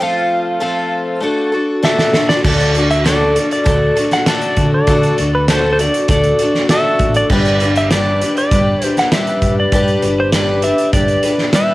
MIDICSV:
0, 0, Header, 1, 5, 480
1, 0, Start_track
1, 0, Tempo, 606673
1, 11, Time_signature, 4, 2, 24, 8
1, 9291, End_track
2, 0, Start_track
2, 0, Title_t, "Pedal steel guitar"
2, 0, Program_c, 0, 26
2, 24, Note_on_c, 0, 77, 107
2, 953, Note_off_c, 0, 77, 0
2, 1461, Note_on_c, 0, 76, 90
2, 1811, Note_on_c, 0, 74, 81
2, 1830, Note_off_c, 0, 76, 0
2, 1926, Note_off_c, 0, 74, 0
2, 1935, Note_on_c, 0, 74, 84
2, 2272, Note_off_c, 0, 74, 0
2, 2301, Note_on_c, 0, 76, 78
2, 2412, Note_off_c, 0, 76, 0
2, 2424, Note_on_c, 0, 74, 84
2, 2757, Note_off_c, 0, 74, 0
2, 2790, Note_on_c, 0, 74, 83
2, 3270, Note_on_c, 0, 78, 83
2, 3279, Note_off_c, 0, 74, 0
2, 3389, Note_off_c, 0, 78, 0
2, 3401, Note_on_c, 0, 74, 88
2, 3726, Note_off_c, 0, 74, 0
2, 3753, Note_on_c, 0, 74, 83
2, 4195, Note_off_c, 0, 74, 0
2, 4232, Note_on_c, 0, 71, 73
2, 4338, Note_off_c, 0, 71, 0
2, 4350, Note_on_c, 0, 72, 83
2, 4522, Note_off_c, 0, 72, 0
2, 4531, Note_on_c, 0, 72, 64
2, 4583, Note_off_c, 0, 72, 0
2, 4598, Note_on_c, 0, 74, 84
2, 4813, Note_off_c, 0, 74, 0
2, 4832, Note_on_c, 0, 74, 92
2, 5274, Note_off_c, 0, 74, 0
2, 5305, Note_on_c, 0, 76, 100
2, 5666, Note_off_c, 0, 76, 0
2, 5669, Note_on_c, 0, 74, 84
2, 5775, Note_off_c, 0, 74, 0
2, 5785, Note_on_c, 0, 74, 97
2, 6117, Note_off_c, 0, 74, 0
2, 6151, Note_on_c, 0, 76, 82
2, 6257, Note_off_c, 0, 76, 0
2, 6264, Note_on_c, 0, 74, 88
2, 6619, Note_off_c, 0, 74, 0
2, 6629, Note_on_c, 0, 74, 91
2, 7001, Note_off_c, 0, 74, 0
2, 7001, Note_on_c, 0, 72, 91
2, 7115, Note_on_c, 0, 78, 86
2, 7117, Note_off_c, 0, 72, 0
2, 7224, Note_off_c, 0, 78, 0
2, 7227, Note_on_c, 0, 76, 97
2, 7556, Note_off_c, 0, 76, 0
2, 7593, Note_on_c, 0, 74, 95
2, 8069, Note_on_c, 0, 72, 77
2, 8077, Note_off_c, 0, 74, 0
2, 8172, Note_off_c, 0, 72, 0
2, 8175, Note_on_c, 0, 74, 87
2, 8416, Note_on_c, 0, 76, 94
2, 8421, Note_off_c, 0, 74, 0
2, 8638, Note_off_c, 0, 76, 0
2, 8654, Note_on_c, 0, 74, 99
2, 9137, Note_off_c, 0, 74, 0
2, 9140, Note_on_c, 0, 76, 96
2, 9291, Note_off_c, 0, 76, 0
2, 9291, End_track
3, 0, Start_track
3, 0, Title_t, "Twelve-string acoustic guitar"
3, 0, Program_c, 1, 25
3, 0, Note_on_c, 1, 53, 90
3, 2, Note_on_c, 1, 57, 80
3, 6, Note_on_c, 1, 60, 90
3, 13, Note_on_c, 1, 65, 89
3, 15, Note_on_c, 1, 69, 91
3, 467, Note_off_c, 1, 53, 0
3, 471, Note_off_c, 1, 57, 0
3, 476, Note_off_c, 1, 60, 0
3, 476, Note_on_c, 1, 53, 79
3, 477, Note_off_c, 1, 65, 0
3, 481, Note_on_c, 1, 57, 85
3, 485, Note_off_c, 1, 69, 0
3, 485, Note_on_c, 1, 60, 82
3, 486, Note_on_c, 1, 65, 94
3, 494, Note_on_c, 1, 69, 84
3, 943, Note_off_c, 1, 57, 0
3, 952, Note_on_c, 1, 57, 67
3, 961, Note_off_c, 1, 60, 0
3, 964, Note_on_c, 1, 62, 72
3, 967, Note_off_c, 1, 53, 0
3, 968, Note_off_c, 1, 65, 0
3, 969, Note_off_c, 1, 69, 0
3, 971, Note_on_c, 1, 66, 73
3, 978, Note_on_c, 1, 69, 73
3, 1193, Note_off_c, 1, 69, 0
3, 1203, Note_on_c, 1, 69, 64
3, 1205, Note_off_c, 1, 57, 0
3, 1205, Note_off_c, 1, 66, 0
3, 1211, Note_off_c, 1, 62, 0
3, 1215, Note_on_c, 1, 66, 62
3, 1225, Note_on_c, 1, 62, 51
3, 1442, Note_off_c, 1, 62, 0
3, 1444, Note_on_c, 1, 50, 92
3, 1448, Note_off_c, 1, 66, 0
3, 1448, Note_on_c, 1, 57, 93
3, 1450, Note_off_c, 1, 69, 0
3, 1451, Note_on_c, 1, 62, 86
3, 1458, Note_on_c, 1, 66, 90
3, 1459, Note_on_c, 1, 69, 98
3, 1677, Note_off_c, 1, 69, 0
3, 1686, Note_on_c, 1, 69, 66
3, 1691, Note_off_c, 1, 50, 0
3, 1693, Note_off_c, 1, 57, 0
3, 1693, Note_off_c, 1, 66, 0
3, 1695, Note_off_c, 1, 62, 0
3, 1703, Note_on_c, 1, 66, 54
3, 1712, Note_on_c, 1, 62, 52
3, 1932, Note_off_c, 1, 69, 0
3, 1933, Note_on_c, 1, 50, 85
3, 1934, Note_off_c, 1, 62, 0
3, 1937, Note_off_c, 1, 66, 0
3, 1938, Note_on_c, 1, 57, 85
3, 1943, Note_on_c, 1, 62, 85
3, 1947, Note_on_c, 1, 66, 90
3, 1951, Note_on_c, 1, 69, 88
3, 2163, Note_off_c, 1, 69, 0
3, 2172, Note_on_c, 1, 69, 53
3, 2176, Note_off_c, 1, 50, 0
3, 2177, Note_off_c, 1, 66, 0
3, 2179, Note_off_c, 1, 57, 0
3, 2181, Note_off_c, 1, 62, 0
3, 2186, Note_on_c, 1, 66, 49
3, 2195, Note_on_c, 1, 62, 45
3, 2407, Note_off_c, 1, 62, 0
3, 2407, Note_on_c, 1, 50, 80
3, 2411, Note_off_c, 1, 66, 0
3, 2416, Note_off_c, 1, 69, 0
3, 2417, Note_on_c, 1, 57, 84
3, 2417, Note_on_c, 1, 62, 81
3, 2420, Note_on_c, 1, 66, 92
3, 2426, Note_on_c, 1, 69, 86
3, 2642, Note_off_c, 1, 69, 0
3, 2651, Note_on_c, 1, 69, 52
3, 2653, Note_off_c, 1, 50, 0
3, 2658, Note_off_c, 1, 57, 0
3, 2658, Note_off_c, 1, 62, 0
3, 2660, Note_off_c, 1, 66, 0
3, 2668, Note_on_c, 1, 66, 52
3, 2680, Note_on_c, 1, 62, 47
3, 2879, Note_off_c, 1, 62, 0
3, 2880, Note_on_c, 1, 57, 58
3, 2889, Note_off_c, 1, 66, 0
3, 2889, Note_on_c, 1, 62, 58
3, 2896, Note_off_c, 1, 69, 0
3, 2899, Note_on_c, 1, 66, 64
3, 2906, Note_on_c, 1, 69, 69
3, 3121, Note_off_c, 1, 69, 0
3, 3130, Note_off_c, 1, 57, 0
3, 3130, Note_on_c, 1, 69, 56
3, 3134, Note_off_c, 1, 62, 0
3, 3137, Note_off_c, 1, 66, 0
3, 3147, Note_on_c, 1, 66, 52
3, 3158, Note_on_c, 1, 62, 44
3, 3371, Note_off_c, 1, 62, 0
3, 3375, Note_off_c, 1, 69, 0
3, 3375, Note_on_c, 1, 50, 77
3, 3378, Note_off_c, 1, 66, 0
3, 3380, Note_on_c, 1, 57, 76
3, 3381, Note_on_c, 1, 62, 87
3, 3388, Note_on_c, 1, 66, 82
3, 3390, Note_on_c, 1, 69, 89
3, 3850, Note_off_c, 1, 50, 0
3, 3852, Note_off_c, 1, 57, 0
3, 3859, Note_on_c, 1, 50, 84
3, 3860, Note_off_c, 1, 66, 0
3, 3862, Note_on_c, 1, 57, 80
3, 3866, Note_off_c, 1, 62, 0
3, 3866, Note_off_c, 1, 69, 0
3, 3869, Note_on_c, 1, 62, 83
3, 3870, Note_on_c, 1, 66, 83
3, 3877, Note_on_c, 1, 69, 92
3, 4087, Note_off_c, 1, 69, 0
3, 4096, Note_on_c, 1, 69, 54
3, 4100, Note_off_c, 1, 50, 0
3, 4101, Note_off_c, 1, 57, 0
3, 4103, Note_off_c, 1, 66, 0
3, 4105, Note_off_c, 1, 62, 0
3, 4112, Note_on_c, 1, 66, 50
3, 4118, Note_on_c, 1, 62, 45
3, 4339, Note_off_c, 1, 69, 0
3, 4342, Note_off_c, 1, 62, 0
3, 4345, Note_on_c, 1, 50, 72
3, 4346, Note_off_c, 1, 66, 0
3, 4349, Note_on_c, 1, 57, 91
3, 4351, Note_on_c, 1, 62, 86
3, 4359, Note_on_c, 1, 66, 83
3, 4360, Note_on_c, 1, 69, 93
3, 4571, Note_off_c, 1, 69, 0
3, 4580, Note_on_c, 1, 69, 59
3, 4583, Note_off_c, 1, 50, 0
3, 4585, Note_off_c, 1, 57, 0
3, 4586, Note_off_c, 1, 62, 0
3, 4587, Note_off_c, 1, 66, 0
3, 4596, Note_on_c, 1, 66, 51
3, 4606, Note_on_c, 1, 62, 48
3, 4820, Note_off_c, 1, 69, 0
3, 4820, Note_on_c, 1, 57, 60
3, 4821, Note_off_c, 1, 62, 0
3, 4828, Note_off_c, 1, 66, 0
3, 4831, Note_on_c, 1, 62, 61
3, 4840, Note_on_c, 1, 66, 62
3, 4845, Note_on_c, 1, 69, 64
3, 5052, Note_off_c, 1, 69, 0
3, 5060, Note_off_c, 1, 57, 0
3, 5062, Note_on_c, 1, 69, 58
3, 5063, Note_off_c, 1, 66, 0
3, 5065, Note_off_c, 1, 62, 0
3, 5073, Note_on_c, 1, 66, 56
3, 5086, Note_on_c, 1, 62, 51
3, 5301, Note_off_c, 1, 62, 0
3, 5301, Note_off_c, 1, 69, 0
3, 5302, Note_on_c, 1, 50, 80
3, 5304, Note_off_c, 1, 66, 0
3, 5305, Note_on_c, 1, 57, 81
3, 5310, Note_on_c, 1, 62, 82
3, 5314, Note_on_c, 1, 66, 86
3, 5320, Note_on_c, 1, 69, 84
3, 5778, Note_off_c, 1, 57, 0
3, 5780, Note_off_c, 1, 50, 0
3, 5781, Note_on_c, 1, 55, 78
3, 5786, Note_off_c, 1, 66, 0
3, 5789, Note_off_c, 1, 62, 0
3, 5789, Note_off_c, 1, 69, 0
3, 5792, Note_on_c, 1, 62, 92
3, 5795, Note_on_c, 1, 67, 95
3, 5800, Note_on_c, 1, 71, 95
3, 6011, Note_off_c, 1, 71, 0
3, 6020, Note_off_c, 1, 55, 0
3, 6021, Note_on_c, 1, 71, 52
3, 6025, Note_off_c, 1, 62, 0
3, 6027, Note_off_c, 1, 67, 0
3, 6039, Note_on_c, 1, 67, 54
3, 6049, Note_on_c, 1, 62, 46
3, 6255, Note_off_c, 1, 62, 0
3, 6257, Note_on_c, 1, 55, 85
3, 6260, Note_off_c, 1, 67, 0
3, 6260, Note_off_c, 1, 71, 0
3, 6265, Note_on_c, 1, 62, 88
3, 6269, Note_on_c, 1, 67, 84
3, 6277, Note_on_c, 1, 71, 88
3, 6493, Note_off_c, 1, 71, 0
3, 6497, Note_off_c, 1, 55, 0
3, 6501, Note_off_c, 1, 62, 0
3, 6503, Note_on_c, 1, 71, 56
3, 6504, Note_off_c, 1, 67, 0
3, 6515, Note_on_c, 1, 67, 58
3, 6526, Note_on_c, 1, 62, 47
3, 6737, Note_on_c, 1, 55, 63
3, 6738, Note_off_c, 1, 62, 0
3, 6740, Note_off_c, 1, 71, 0
3, 6743, Note_off_c, 1, 67, 0
3, 6747, Note_on_c, 1, 62, 64
3, 6753, Note_on_c, 1, 67, 66
3, 6761, Note_on_c, 1, 71, 70
3, 6973, Note_off_c, 1, 71, 0
3, 6977, Note_off_c, 1, 55, 0
3, 6982, Note_off_c, 1, 62, 0
3, 6982, Note_on_c, 1, 71, 60
3, 6985, Note_off_c, 1, 67, 0
3, 6996, Note_on_c, 1, 67, 57
3, 7006, Note_on_c, 1, 62, 45
3, 7215, Note_off_c, 1, 62, 0
3, 7218, Note_on_c, 1, 55, 78
3, 7219, Note_off_c, 1, 71, 0
3, 7221, Note_off_c, 1, 67, 0
3, 7225, Note_on_c, 1, 62, 84
3, 7230, Note_on_c, 1, 67, 84
3, 7236, Note_on_c, 1, 71, 79
3, 7689, Note_off_c, 1, 55, 0
3, 7698, Note_on_c, 1, 55, 85
3, 7700, Note_off_c, 1, 67, 0
3, 7701, Note_off_c, 1, 62, 0
3, 7704, Note_on_c, 1, 62, 88
3, 7705, Note_off_c, 1, 71, 0
3, 7710, Note_on_c, 1, 67, 86
3, 7716, Note_on_c, 1, 71, 96
3, 7920, Note_off_c, 1, 71, 0
3, 7929, Note_on_c, 1, 71, 50
3, 7934, Note_off_c, 1, 67, 0
3, 7936, Note_off_c, 1, 55, 0
3, 7939, Note_off_c, 1, 62, 0
3, 7943, Note_on_c, 1, 67, 50
3, 7956, Note_on_c, 1, 62, 43
3, 8165, Note_off_c, 1, 62, 0
3, 8169, Note_on_c, 1, 55, 83
3, 8171, Note_off_c, 1, 71, 0
3, 8174, Note_off_c, 1, 67, 0
3, 8175, Note_on_c, 1, 62, 81
3, 8184, Note_on_c, 1, 67, 87
3, 8186, Note_on_c, 1, 71, 93
3, 8397, Note_off_c, 1, 71, 0
3, 8406, Note_off_c, 1, 67, 0
3, 8407, Note_on_c, 1, 71, 57
3, 8411, Note_off_c, 1, 55, 0
3, 8414, Note_off_c, 1, 62, 0
3, 8415, Note_on_c, 1, 67, 57
3, 8427, Note_on_c, 1, 62, 46
3, 8647, Note_on_c, 1, 55, 58
3, 8648, Note_off_c, 1, 62, 0
3, 8649, Note_off_c, 1, 71, 0
3, 8654, Note_off_c, 1, 67, 0
3, 8657, Note_on_c, 1, 62, 64
3, 8664, Note_on_c, 1, 67, 69
3, 8670, Note_on_c, 1, 71, 68
3, 8881, Note_off_c, 1, 71, 0
3, 8889, Note_off_c, 1, 55, 0
3, 8890, Note_on_c, 1, 71, 53
3, 8892, Note_off_c, 1, 67, 0
3, 8894, Note_off_c, 1, 62, 0
3, 8901, Note_on_c, 1, 67, 47
3, 8911, Note_on_c, 1, 62, 47
3, 9122, Note_off_c, 1, 62, 0
3, 9126, Note_on_c, 1, 55, 82
3, 9128, Note_off_c, 1, 67, 0
3, 9130, Note_off_c, 1, 71, 0
3, 9131, Note_on_c, 1, 62, 80
3, 9137, Note_on_c, 1, 67, 79
3, 9144, Note_on_c, 1, 71, 81
3, 9291, Note_off_c, 1, 55, 0
3, 9291, Note_off_c, 1, 62, 0
3, 9291, Note_off_c, 1, 67, 0
3, 9291, Note_off_c, 1, 71, 0
3, 9291, End_track
4, 0, Start_track
4, 0, Title_t, "Fingered electric bass"
4, 0, Program_c, 2, 33
4, 1936, Note_on_c, 2, 38, 98
4, 2661, Note_off_c, 2, 38, 0
4, 2900, Note_on_c, 2, 38, 91
4, 3081, Note_off_c, 2, 38, 0
4, 3621, Note_on_c, 2, 50, 95
4, 3802, Note_off_c, 2, 50, 0
4, 3859, Note_on_c, 2, 50, 108
4, 4041, Note_off_c, 2, 50, 0
4, 4111, Note_on_c, 2, 38, 83
4, 4650, Note_off_c, 2, 38, 0
4, 4819, Note_on_c, 2, 38, 96
4, 5000, Note_off_c, 2, 38, 0
4, 5536, Note_on_c, 2, 33, 97
4, 5718, Note_off_c, 2, 33, 0
4, 5777, Note_on_c, 2, 31, 101
4, 6500, Note_off_c, 2, 31, 0
4, 6737, Note_on_c, 2, 31, 97
4, 6917, Note_off_c, 2, 31, 0
4, 7455, Note_on_c, 2, 43, 102
4, 7636, Note_off_c, 2, 43, 0
4, 7690, Note_on_c, 2, 43, 105
4, 7872, Note_off_c, 2, 43, 0
4, 7935, Note_on_c, 2, 31, 87
4, 8476, Note_off_c, 2, 31, 0
4, 8650, Note_on_c, 2, 31, 91
4, 8831, Note_off_c, 2, 31, 0
4, 9291, End_track
5, 0, Start_track
5, 0, Title_t, "Drums"
5, 1452, Note_on_c, 9, 38, 65
5, 1531, Note_off_c, 9, 38, 0
5, 1572, Note_on_c, 9, 38, 68
5, 1651, Note_off_c, 9, 38, 0
5, 1690, Note_on_c, 9, 38, 85
5, 1769, Note_off_c, 9, 38, 0
5, 1814, Note_on_c, 9, 38, 86
5, 1893, Note_off_c, 9, 38, 0
5, 1933, Note_on_c, 9, 49, 109
5, 1934, Note_on_c, 9, 36, 109
5, 2012, Note_off_c, 9, 49, 0
5, 2013, Note_off_c, 9, 36, 0
5, 2055, Note_on_c, 9, 42, 44
5, 2134, Note_off_c, 9, 42, 0
5, 2173, Note_on_c, 9, 42, 72
5, 2252, Note_off_c, 9, 42, 0
5, 2298, Note_on_c, 9, 42, 43
5, 2377, Note_off_c, 9, 42, 0
5, 2418, Note_on_c, 9, 42, 97
5, 2419, Note_on_c, 9, 38, 102
5, 2497, Note_off_c, 9, 42, 0
5, 2498, Note_off_c, 9, 38, 0
5, 2658, Note_on_c, 9, 42, 68
5, 2737, Note_off_c, 9, 42, 0
5, 2779, Note_on_c, 9, 42, 43
5, 2858, Note_off_c, 9, 42, 0
5, 2893, Note_on_c, 9, 42, 95
5, 2897, Note_on_c, 9, 36, 115
5, 2972, Note_off_c, 9, 42, 0
5, 2977, Note_off_c, 9, 36, 0
5, 3138, Note_on_c, 9, 42, 73
5, 3217, Note_off_c, 9, 42, 0
5, 3254, Note_on_c, 9, 42, 41
5, 3255, Note_on_c, 9, 38, 29
5, 3333, Note_off_c, 9, 42, 0
5, 3334, Note_off_c, 9, 38, 0
5, 3373, Note_on_c, 9, 42, 102
5, 3374, Note_on_c, 9, 38, 117
5, 3452, Note_off_c, 9, 42, 0
5, 3453, Note_off_c, 9, 38, 0
5, 3494, Note_on_c, 9, 42, 46
5, 3573, Note_off_c, 9, 42, 0
5, 3613, Note_on_c, 9, 42, 67
5, 3617, Note_on_c, 9, 36, 79
5, 3692, Note_off_c, 9, 42, 0
5, 3696, Note_off_c, 9, 36, 0
5, 3853, Note_on_c, 9, 42, 92
5, 3858, Note_on_c, 9, 36, 107
5, 3932, Note_off_c, 9, 42, 0
5, 3937, Note_off_c, 9, 36, 0
5, 3981, Note_on_c, 9, 42, 45
5, 4060, Note_off_c, 9, 42, 0
5, 4098, Note_on_c, 9, 42, 71
5, 4177, Note_off_c, 9, 42, 0
5, 4337, Note_on_c, 9, 42, 99
5, 4338, Note_on_c, 9, 38, 106
5, 4416, Note_off_c, 9, 42, 0
5, 4417, Note_off_c, 9, 38, 0
5, 4581, Note_on_c, 9, 42, 77
5, 4661, Note_off_c, 9, 42, 0
5, 4700, Note_on_c, 9, 42, 47
5, 4779, Note_off_c, 9, 42, 0
5, 4813, Note_on_c, 9, 42, 107
5, 4817, Note_on_c, 9, 36, 119
5, 4892, Note_off_c, 9, 42, 0
5, 4896, Note_off_c, 9, 36, 0
5, 4934, Note_on_c, 9, 42, 49
5, 5013, Note_off_c, 9, 42, 0
5, 5054, Note_on_c, 9, 42, 83
5, 5133, Note_off_c, 9, 42, 0
5, 5178, Note_on_c, 9, 38, 31
5, 5257, Note_off_c, 9, 38, 0
5, 5294, Note_on_c, 9, 42, 107
5, 5295, Note_on_c, 9, 38, 120
5, 5373, Note_off_c, 9, 42, 0
5, 5374, Note_off_c, 9, 38, 0
5, 5532, Note_on_c, 9, 42, 71
5, 5536, Note_on_c, 9, 36, 76
5, 5611, Note_off_c, 9, 42, 0
5, 5615, Note_off_c, 9, 36, 0
5, 5652, Note_on_c, 9, 42, 49
5, 5731, Note_off_c, 9, 42, 0
5, 5773, Note_on_c, 9, 49, 94
5, 5776, Note_on_c, 9, 36, 107
5, 5852, Note_off_c, 9, 49, 0
5, 5855, Note_off_c, 9, 36, 0
5, 5897, Note_on_c, 9, 42, 46
5, 5976, Note_off_c, 9, 42, 0
5, 6014, Note_on_c, 9, 42, 74
5, 6094, Note_off_c, 9, 42, 0
5, 6137, Note_on_c, 9, 42, 47
5, 6216, Note_off_c, 9, 42, 0
5, 6255, Note_on_c, 9, 42, 99
5, 6256, Note_on_c, 9, 38, 108
5, 6335, Note_off_c, 9, 38, 0
5, 6335, Note_off_c, 9, 42, 0
5, 6499, Note_on_c, 9, 42, 67
5, 6578, Note_off_c, 9, 42, 0
5, 6620, Note_on_c, 9, 42, 47
5, 6699, Note_off_c, 9, 42, 0
5, 6735, Note_on_c, 9, 42, 102
5, 6736, Note_on_c, 9, 36, 117
5, 6815, Note_off_c, 9, 36, 0
5, 6815, Note_off_c, 9, 42, 0
5, 6975, Note_on_c, 9, 42, 76
5, 7054, Note_off_c, 9, 42, 0
5, 7096, Note_on_c, 9, 42, 41
5, 7097, Note_on_c, 9, 38, 31
5, 7176, Note_off_c, 9, 38, 0
5, 7176, Note_off_c, 9, 42, 0
5, 7214, Note_on_c, 9, 38, 118
5, 7214, Note_on_c, 9, 42, 97
5, 7293, Note_off_c, 9, 42, 0
5, 7294, Note_off_c, 9, 38, 0
5, 7334, Note_on_c, 9, 42, 48
5, 7413, Note_off_c, 9, 42, 0
5, 7452, Note_on_c, 9, 36, 75
5, 7452, Note_on_c, 9, 42, 69
5, 7531, Note_off_c, 9, 42, 0
5, 7532, Note_off_c, 9, 36, 0
5, 7690, Note_on_c, 9, 42, 97
5, 7692, Note_on_c, 9, 36, 110
5, 7769, Note_off_c, 9, 42, 0
5, 7771, Note_off_c, 9, 36, 0
5, 7814, Note_on_c, 9, 42, 42
5, 7893, Note_off_c, 9, 42, 0
5, 7930, Note_on_c, 9, 42, 72
5, 8009, Note_off_c, 9, 42, 0
5, 8168, Note_on_c, 9, 42, 93
5, 8169, Note_on_c, 9, 38, 108
5, 8247, Note_off_c, 9, 42, 0
5, 8248, Note_off_c, 9, 38, 0
5, 8404, Note_on_c, 9, 42, 73
5, 8483, Note_off_c, 9, 42, 0
5, 8530, Note_on_c, 9, 42, 48
5, 8610, Note_off_c, 9, 42, 0
5, 8648, Note_on_c, 9, 42, 103
5, 8649, Note_on_c, 9, 36, 118
5, 8727, Note_off_c, 9, 42, 0
5, 8729, Note_off_c, 9, 36, 0
5, 8767, Note_on_c, 9, 42, 45
5, 8846, Note_off_c, 9, 42, 0
5, 8884, Note_on_c, 9, 42, 83
5, 8963, Note_off_c, 9, 42, 0
5, 9005, Note_on_c, 9, 38, 30
5, 9084, Note_off_c, 9, 38, 0
5, 9120, Note_on_c, 9, 42, 108
5, 9121, Note_on_c, 9, 38, 117
5, 9199, Note_off_c, 9, 42, 0
5, 9200, Note_off_c, 9, 38, 0
5, 9291, End_track
0, 0, End_of_file